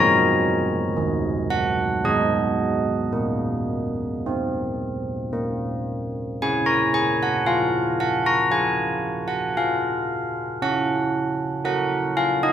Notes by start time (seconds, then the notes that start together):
Already playing: F#3 D#4 A#5
0.96 D#3
1.50 F#5
2.04 G#3 D#4 D#5
3.13 A#3
4.26 C4
5.33 A#3
6.42 C#4 G#5
6.66 A#5
6.94 G#5
7.23 F#5
7.46 F4 F5
8.00 F#5
8.26 A#5
8.51 F4 G#5
9.28 F#5
9.57 F4 F5
10.62 C#4 F#5
11.65 F#4 A#4 F#5
12.17 F5
12.43 D#5